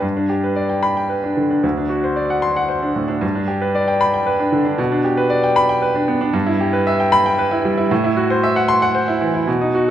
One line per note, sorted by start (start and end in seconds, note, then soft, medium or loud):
0.02 1.59 G2 medium
0.17 0.38 D4 soft
0.29 0.51 G4 soft
0.44 0.65 B4 soft
0.56 0.78 D5 medium
0.69 0.91 G5 soft
0.83 1.04 B5 medium
0.97 1.18 G5 medium
1.09 1.31 B4 soft
1.23 1.45 D4 soft
1.37 1.58 D3 soft
1.50 1.64 D4 soft
1.63 3.19 D2 medium
1.77 1.98 D4 soft
1.89 2.11 F#4 medium
2.04 2.25 C5 soft
2.16 2.38 D5 medium
2.30 2.51 F#5 medium
2.42 2.64 C6 medium
2.56 2.78 F#5 medium
2.69 2.90 C5 soft
2.82 3.04 D4 soft
2.96 3.17 A2 soft
3.08 3.22 D4 medium
3.21 4.74 G2 medium
3.35 3.57 D4 medium
3.48 3.70 G4 medium
3.62 3.83 B4 medium
3.75 3.96 D5 medium
3.88 4.09 G5 medium
4.01 4.22 B5 medium
4.14 4.34 G5 medium
4.26 4.47 B4 medium
4.39 4.60 D4 medium
4.52 4.73 D3 medium
4.65 4.78 D4 medium
4.78 6.30 B2 medium
4.92 5.13 D4 medium
5.04 5.25 G4 medium
5.17 5.38 B4 medium
5.30 5.51 D5 medium
5.43 5.64 G5 medium
5.56 5.77 B5 medium
5.69 5.90 G5 medium
5.82 6.03 B4 medium
5.95 6.16 D4 medium
6.08 6.29 B3 medium
6.21 6.34 D4 medium
6.33 7.86 G2 medium
6.47 6.68 E4 medium
6.61 6.81 G4 medium
6.73 6.94 B4 medium
6.87 7.07 E5 medium
7.00 7.20 G5 medium
7.12 7.33 B5 loud
7.26 7.47 G5 medium
7.39 7.59 B4 medium
7.51 7.72 E4 medium
7.65 7.86 G3 medium
7.78 7.91 E4 medium
7.91 9.43 A2 medium
8.04 8.24 E4 medium
8.17 8.37 F#4 medium
8.30 8.51 C5 medium
8.43 8.64 E5 medium
8.56 8.77 F#5 medium
8.68 8.89 C6 loud
8.82 9.03 F#5 medium
8.95 9.15 C5 medium
9.08 9.29 E4 medium
9.21 9.42 E3 medium
9.34 9.47 E4 medium
9.47 9.90 B2 medium
9.61 9.82 D#4 medium
9.75 9.90 F#4 medium